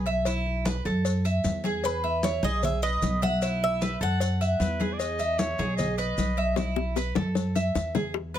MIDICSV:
0, 0, Header, 1, 6, 480
1, 0, Start_track
1, 0, Tempo, 394218
1, 323, Time_signature, 4, 2, 24, 8
1, 10213, End_track
2, 0, Start_track
2, 0, Title_t, "Cuban tres"
2, 0, Program_c, 0, 25
2, 2252, Note_on_c, 0, 71, 92
2, 2722, Note_off_c, 0, 71, 0
2, 2727, Note_on_c, 0, 73, 86
2, 2973, Note_off_c, 0, 73, 0
2, 2976, Note_on_c, 0, 75, 104
2, 3193, Note_off_c, 0, 75, 0
2, 3222, Note_on_c, 0, 76, 83
2, 3438, Note_off_c, 0, 76, 0
2, 3443, Note_on_c, 0, 75, 88
2, 3927, Note_off_c, 0, 75, 0
2, 3932, Note_on_c, 0, 78, 101
2, 4422, Note_off_c, 0, 78, 0
2, 4427, Note_on_c, 0, 76, 108
2, 4899, Note_off_c, 0, 76, 0
2, 4903, Note_on_c, 0, 78, 104
2, 5114, Note_off_c, 0, 78, 0
2, 5129, Note_on_c, 0, 78, 83
2, 5798, Note_off_c, 0, 78, 0
2, 10173, Note_on_c, 0, 71, 79
2, 10213, Note_off_c, 0, 71, 0
2, 10213, End_track
3, 0, Start_track
3, 0, Title_t, "Trumpet"
3, 0, Program_c, 1, 56
3, 5603, Note_on_c, 1, 71, 84
3, 5998, Note_on_c, 1, 74, 84
3, 6016, Note_off_c, 1, 71, 0
3, 6061, Note_on_c, 1, 75, 108
3, 6079, Note_off_c, 1, 74, 0
3, 6562, Note_on_c, 1, 73, 110
3, 6580, Note_off_c, 1, 75, 0
3, 7010, Note_off_c, 1, 73, 0
3, 7017, Note_on_c, 1, 75, 103
3, 7253, Note_off_c, 1, 75, 0
3, 7268, Note_on_c, 1, 75, 96
3, 8187, Note_off_c, 1, 75, 0
3, 10213, End_track
4, 0, Start_track
4, 0, Title_t, "Cuban tres"
4, 0, Program_c, 2, 25
4, 78, Note_on_c, 2, 76, 88
4, 313, Note_off_c, 2, 76, 0
4, 321, Note_on_c, 2, 64, 85
4, 788, Note_off_c, 2, 64, 0
4, 798, Note_on_c, 2, 71, 75
4, 1033, Note_off_c, 2, 71, 0
4, 1043, Note_on_c, 2, 69, 74
4, 1509, Note_off_c, 2, 69, 0
4, 1522, Note_on_c, 2, 76, 82
4, 1988, Note_off_c, 2, 76, 0
4, 2007, Note_on_c, 2, 68, 83
4, 2471, Note_off_c, 2, 68, 0
4, 2480, Note_on_c, 2, 76, 78
4, 2948, Note_off_c, 2, 76, 0
4, 2959, Note_on_c, 2, 68, 76
4, 3427, Note_off_c, 2, 68, 0
4, 3445, Note_on_c, 2, 71, 72
4, 3910, Note_off_c, 2, 71, 0
4, 3924, Note_on_c, 2, 76, 80
4, 4157, Note_off_c, 2, 76, 0
4, 4163, Note_on_c, 2, 64, 73
4, 4629, Note_off_c, 2, 64, 0
4, 4646, Note_on_c, 2, 71, 69
4, 4876, Note_off_c, 2, 71, 0
4, 4881, Note_on_c, 2, 69, 75
4, 5349, Note_off_c, 2, 69, 0
4, 5369, Note_on_c, 2, 76, 81
4, 5832, Note_off_c, 2, 76, 0
4, 5852, Note_on_c, 2, 68, 83
4, 6314, Note_off_c, 2, 68, 0
4, 6324, Note_on_c, 2, 76, 74
4, 6790, Note_off_c, 2, 76, 0
4, 6807, Note_on_c, 2, 68, 76
4, 7271, Note_off_c, 2, 68, 0
4, 7285, Note_on_c, 2, 71, 87
4, 7750, Note_off_c, 2, 71, 0
4, 7765, Note_on_c, 2, 76, 82
4, 7996, Note_off_c, 2, 76, 0
4, 8001, Note_on_c, 2, 64, 73
4, 8468, Note_off_c, 2, 64, 0
4, 8484, Note_on_c, 2, 71, 82
4, 8714, Note_off_c, 2, 71, 0
4, 8719, Note_on_c, 2, 69, 71
4, 9187, Note_off_c, 2, 69, 0
4, 9200, Note_on_c, 2, 76, 85
4, 9667, Note_off_c, 2, 76, 0
4, 9681, Note_on_c, 2, 68, 80
4, 9915, Note_off_c, 2, 68, 0
4, 10159, Note_on_c, 2, 71, 75
4, 10213, Note_off_c, 2, 71, 0
4, 10213, End_track
5, 0, Start_track
5, 0, Title_t, "Upright bass"
5, 0, Program_c, 3, 32
5, 0, Note_on_c, 3, 35, 91
5, 963, Note_off_c, 3, 35, 0
5, 1037, Note_on_c, 3, 42, 93
5, 1711, Note_off_c, 3, 42, 0
5, 1756, Note_on_c, 3, 40, 92
5, 2887, Note_off_c, 3, 40, 0
5, 2955, Note_on_c, 3, 35, 87
5, 3631, Note_off_c, 3, 35, 0
5, 3678, Note_on_c, 3, 35, 89
5, 4809, Note_off_c, 3, 35, 0
5, 4878, Note_on_c, 3, 42, 88
5, 5553, Note_off_c, 3, 42, 0
5, 5599, Note_on_c, 3, 40, 92
5, 6729, Note_off_c, 3, 40, 0
5, 6802, Note_on_c, 3, 35, 87
5, 7474, Note_off_c, 3, 35, 0
5, 7521, Note_on_c, 3, 35, 80
5, 8649, Note_off_c, 3, 35, 0
5, 8721, Note_on_c, 3, 42, 93
5, 9393, Note_off_c, 3, 42, 0
5, 9438, Note_on_c, 3, 40, 83
5, 10213, Note_off_c, 3, 40, 0
5, 10213, End_track
6, 0, Start_track
6, 0, Title_t, "Drums"
6, 69, Note_on_c, 9, 56, 68
6, 79, Note_on_c, 9, 70, 29
6, 191, Note_off_c, 9, 56, 0
6, 200, Note_off_c, 9, 70, 0
6, 308, Note_on_c, 9, 56, 117
6, 318, Note_on_c, 9, 70, 67
6, 323, Note_on_c, 9, 63, 36
6, 430, Note_off_c, 9, 56, 0
6, 440, Note_off_c, 9, 70, 0
6, 445, Note_off_c, 9, 63, 0
6, 564, Note_on_c, 9, 63, 36
6, 686, Note_off_c, 9, 63, 0
6, 794, Note_on_c, 9, 56, 72
6, 798, Note_on_c, 9, 63, 111
6, 805, Note_on_c, 9, 70, 70
6, 915, Note_off_c, 9, 56, 0
6, 920, Note_off_c, 9, 63, 0
6, 926, Note_off_c, 9, 70, 0
6, 1038, Note_on_c, 9, 56, 74
6, 1040, Note_on_c, 9, 63, 31
6, 1050, Note_on_c, 9, 70, 31
6, 1160, Note_off_c, 9, 56, 0
6, 1162, Note_off_c, 9, 63, 0
6, 1172, Note_off_c, 9, 70, 0
6, 1277, Note_on_c, 9, 56, 116
6, 1277, Note_on_c, 9, 63, 33
6, 1286, Note_on_c, 9, 70, 74
6, 1399, Note_off_c, 9, 56, 0
6, 1399, Note_off_c, 9, 63, 0
6, 1408, Note_off_c, 9, 70, 0
6, 1518, Note_on_c, 9, 63, 35
6, 1523, Note_on_c, 9, 70, 58
6, 1640, Note_off_c, 9, 63, 0
6, 1645, Note_off_c, 9, 70, 0
6, 1757, Note_on_c, 9, 56, 76
6, 1758, Note_on_c, 9, 70, 74
6, 1761, Note_on_c, 9, 63, 89
6, 1879, Note_off_c, 9, 56, 0
6, 1880, Note_off_c, 9, 70, 0
6, 1882, Note_off_c, 9, 63, 0
6, 1994, Note_on_c, 9, 56, 78
6, 1997, Note_on_c, 9, 63, 75
6, 2011, Note_on_c, 9, 70, 29
6, 2116, Note_off_c, 9, 56, 0
6, 2119, Note_off_c, 9, 63, 0
6, 2133, Note_off_c, 9, 70, 0
6, 2236, Note_on_c, 9, 56, 102
6, 2243, Note_on_c, 9, 70, 73
6, 2244, Note_on_c, 9, 63, 32
6, 2358, Note_off_c, 9, 56, 0
6, 2365, Note_off_c, 9, 70, 0
6, 2366, Note_off_c, 9, 63, 0
6, 2479, Note_on_c, 9, 63, 33
6, 2601, Note_off_c, 9, 63, 0
6, 2716, Note_on_c, 9, 63, 97
6, 2721, Note_on_c, 9, 70, 67
6, 2728, Note_on_c, 9, 56, 70
6, 2838, Note_off_c, 9, 63, 0
6, 2842, Note_off_c, 9, 70, 0
6, 2850, Note_off_c, 9, 56, 0
6, 2956, Note_on_c, 9, 63, 88
6, 2960, Note_on_c, 9, 70, 31
6, 3078, Note_off_c, 9, 63, 0
6, 3082, Note_off_c, 9, 70, 0
6, 3200, Note_on_c, 9, 63, 35
6, 3200, Note_on_c, 9, 64, 82
6, 3202, Note_on_c, 9, 70, 75
6, 3203, Note_on_c, 9, 56, 123
6, 3321, Note_off_c, 9, 63, 0
6, 3321, Note_off_c, 9, 64, 0
6, 3324, Note_off_c, 9, 70, 0
6, 3325, Note_off_c, 9, 56, 0
6, 3438, Note_on_c, 9, 70, 55
6, 3442, Note_on_c, 9, 56, 65
6, 3444, Note_on_c, 9, 63, 34
6, 3560, Note_off_c, 9, 70, 0
6, 3564, Note_off_c, 9, 56, 0
6, 3566, Note_off_c, 9, 63, 0
6, 3681, Note_on_c, 9, 70, 73
6, 3682, Note_on_c, 9, 63, 90
6, 3685, Note_on_c, 9, 56, 79
6, 3803, Note_off_c, 9, 70, 0
6, 3804, Note_off_c, 9, 63, 0
6, 3807, Note_off_c, 9, 56, 0
6, 3922, Note_on_c, 9, 56, 73
6, 3923, Note_on_c, 9, 70, 29
6, 3932, Note_on_c, 9, 63, 71
6, 4043, Note_off_c, 9, 56, 0
6, 4045, Note_off_c, 9, 70, 0
6, 4053, Note_off_c, 9, 63, 0
6, 4163, Note_on_c, 9, 63, 35
6, 4166, Note_on_c, 9, 70, 80
6, 4169, Note_on_c, 9, 56, 99
6, 4284, Note_off_c, 9, 63, 0
6, 4287, Note_off_c, 9, 70, 0
6, 4290, Note_off_c, 9, 56, 0
6, 4413, Note_on_c, 9, 63, 36
6, 4535, Note_off_c, 9, 63, 0
6, 4647, Note_on_c, 9, 70, 69
6, 4651, Note_on_c, 9, 63, 98
6, 4652, Note_on_c, 9, 56, 62
6, 4769, Note_off_c, 9, 70, 0
6, 4773, Note_off_c, 9, 63, 0
6, 4774, Note_off_c, 9, 56, 0
6, 4888, Note_on_c, 9, 56, 65
6, 4893, Note_on_c, 9, 63, 30
6, 4895, Note_on_c, 9, 70, 31
6, 5009, Note_off_c, 9, 56, 0
6, 5014, Note_off_c, 9, 63, 0
6, 5017, Note_off_c, 9, 70, 0
6, 5118, Note_on_c, 9, 56, 118
6, 5133, Note_on_c, 9, 70, 75
6, 5139, Note_on_c, 9, 63, 36
6, 5240, Note_off_c, 9, 56, 0
6, 5255, Note_off_c, 9, 70, 0
6, 5261, Note_off_c, 9, 63, 0
6, 5379, Note_on_c, 9, 63, 38
6, 5379, Note_on_c, 9, 70, 60
6, 5500, Note_off_c, 9, 70, 0
6, 5501, Note_off_c, 9, 63, 0
6, 5600, Note_on_c, 9, 56, 80
6, 5612, Note_on_c, 9, 63, 85
6, 5615, Note_on_c, 9, 70, 79
6, 5721, Note_off_c, 9, 56, 0
6, 5734, Note_off_c, 9, 63, 0
6, 5737, Note_off_c, 9, 70, 0
6, 5841, Note_on_c, 9, 56, 76
6, 5847, Note_on_c, 9, 63, 80
6, 5849, Note_on_c, 9, 70, 29
6, 5962, Note_off_c, 9, 56, 0
6, 5968, Note_off_c, 9, 63, 0
6, 5971, Note_off_c, 9, 70, 0
6, 6083, Note_on_c, 9, 56, 109
6, 6090, Note_on_c, 9, 70, 70
6, 6092, Note_on_c, 9, 63, 31
6, 6205, Note_off_c, 9, 56, 0
6, 6212, Note_off_c, 9, 70, 0
6, 6214, Note_off_c, 9, 63, 0
6, 6321, Note_on_c, 9, 70, 64
6, 6324, Note_on_c, 9, 63, 32
6, 6442, Note_off_c, 9, 70, 0
6, 6445, Note_off_c, 9, 63, 0
6, 6563, Note_on_c, 9, 56, 67
6, 6563, Note_on_c, 9, 63, 111
6, 6563, Note_on_c, 9, 70, 69
6, 6685, Note_off_c, 9, 56, 0
6, 6685, Note_off_c, 9, 63, 0
6, 6685, Note_off_c, 9, 70, 0
6, 6803, Note_on_c, 9, 70, 32
6, 6812, Note_on_c, 9, 63, 86
6, 6925, Note_off_c, 9, 70, 0
6, 6934, Note_off_c, 9, 63, 0
6, 7042, Note_on_c, 9, 70, 67
6, 7044, Note_on_c, 9, 56, 110
6, 7050, Note_on_c, 9, 63, 33
6, 7050, Note_on_c, 9, 64, 79
6, 7164, Note_off_c, 9, 70, 0
6, 7166, Note_off_c, 9, 56, 0
6, 7171, Note_off_c, 9, 63, 0
6, 7171, Note_off_c, 9, 64, 0
6, 7280, Note_on_c, 9, 56, 67
6, 7284, Note_on_c, 9, 70, 64
6, 7288, Note_on_c, 9, 63, 33
6, 7401, Note_off_c, 9, 56, 0
6, 7406, Note_off_c, 9, 70, 0
6, 7410, Note_off_c, 9, 63, 0
6, 7525, Note_on_c, 9, 70, 74
6, 7527, Note_on_c, 9, 56, 75
6, 7532, Note_on_c, 9, 63, 84
6, 7646, Note_off_c, 9, 70, 0
6, 7648, Note_off_c, 9, 56, 0
6, 7653, Note_off_c, 9, 63, 0
6, 7757, Note_on_c, 9, 56, 66
6, 7761, Note_on_c, 9, 70, 29
6, 7878, Note_off_c, 9, 56, 0
6, 7883, Note_off_c, 9, 70, 0
6, 7990, Note_on_c, 9, 56, 97
6, 7990, Note_on_c, 9, 60, 99
6, 8001, Note_on_c, 9, 70, 75
6, 8006, Note_on_c, 9, 63, 102
6, 8112, Note_off_c, 9, 56, 0
6, 8112, Note_off_c, 9, 60, 0
6, 8123, Note_off_c, 9, 70, 0
6, 8128, Note_off_c, 9, 63, 0
6, 8234, Note_on_c, 9, 60, 94
6, 8356, Note_off_c, 9, 60, 0
6, 8476, Note_on_c, 9, 56, 61
6, 8476, Note_on_c, 9, 60, 87
6, 8483, Note_on_c, 9, 70, 70
6, 8598, Note_off_c, 9, 56, 0
6, 8598, Note_off_c, 9, 60, 0
6, 8605, Note_off_c, 9, 70, 0
6, 8710, Note_on_c, 9, 56, 70
6, 8710, Note_on_c, 9, 61, 99
6, 8719, Note_on_c, 9, 64, 96
6, 8732, Note_on_c, 9, 70, 30
6, 8832, Note_off_c, 9, 56, 0
6, 8832, Note_off_c, 9, 61, 0
6, 8840, Note_off_c, 9, 64, 0
6, 8854, Note_off_c, 9, 70, 0
6, 8953, Note_on_c, 9, 56, 117
6, 8953, Note_on_c, 9, 61, 76
6, 8968, Note_on_c, 9, 70, 75
6, 9074, Note_off_c, 9, 56, 0
6, 9074, Note_off_c, 9, 61, 0
6, 9089, Note_off_c, 9, 70, 0
6, 9203, Note_on_c, 9, 61, 74
6, 9205, Note_on_c, 9, 70, 64
6, 9325, Note_off_c, 9, 61, 0
6, 9326, Note_off_c, 9, 70, 0
6, 9441, Note_on_c, 9, 56, 74
6, 9441, Note_on_c, 9, 61, 75
6, 9445, Note_on_c, 9, 70, 77
6, 9563, Note_off_c, 9, 56, 0
6, 9563, Note_off_c, 9, 61, 0
6, 9566, Note_off_c, 9, 70, 0
6, 9677, Note_on_c, 9, 56, 73
6, 9677, Note_on_c, 9, 61, 93
6, 9683, Note_on_c, 9, 70, 30
6, 9685, Note_on_c, 9, 64, 92
6, 9799, Note_off_c, 9, 56, 0
6, 9799, Note_off_c, 9, 61, 0
6, 9805, Note_off_c, 9, 70, 0
6, 9806, Note_off_c, 9, 64, 0
6, 9914, Note_on_c, 9, 60, 68
6, 9925, Note_on_c, 9, 63, 35
6, 10036, Note_off_c, 9, 60, 0
6, 10047, Note_off_c, 9, 63, 0
6, 10163, Note_on_c, 9, 63, 37
6, 10213, Note_off_c, 9, 63, 0
6, 10213, End_track
0, 0, End_of_file